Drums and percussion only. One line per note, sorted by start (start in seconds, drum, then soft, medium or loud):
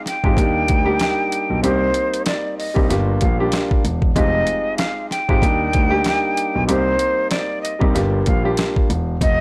0.06 snare soft
0.06 closed hi-hat medium
0.24 kick medium
0.37 kick medium
0.37 closed hi-hat loud
0.68 kick loud
0.68 closed hi-hat medium
0.99 snare loud
0.99 closed hi-hat medium
1.32 closed hi-hat medium
1.64 closed hi-hat loud
1.94 closed hi-hat medium
2.14 closed hi-hat medium
2.26 snare loud
2.26 closed hi-hat medium
2.60 open hi-hat soft
2.76 kick medium
2.90 snare soft
2.90 closed hi-hat loud
3.21 kick medium
3.21 closed hi-hat medium
3.52 snare loud
3.52 closed hi-hat medium
3.71 kick loud
3.85 closed hi-hat medium
4.02 kick medium
4.16 kick loud
4.16 closed hi-hat loud
4.47 closed hi-hat medium
4.78 snare loud
4.78 closed hi-hat medium
5.11 snare soft
5.11 closed hi-hat medium
5.29 kick medium
5.42 kick medium
5.42 closed hi-hat medium
5.73 kick medium
5.73 closed hi-hat medium
6.04 snare loud
6.04 closed hi-hat medium
6.37 closed hi-hat medium
6.69 closed hi-hat loud
6.99 closed hi-hat medium
7.31 snare loud
7.31 closed hi-hat medium
7.65 closed hi-hat medium
7.81 kick medium
7.95 snare soft
7.95 closed hi-hat loud
8.26 kick medium
8.26 closed hi-hat medium
8.57 snare loud
8.57 closed hi-hat medium
8.76 kick loud
8.90 closed hi-hat medium
9.21 kick loud
9.21 closed hi-hat loud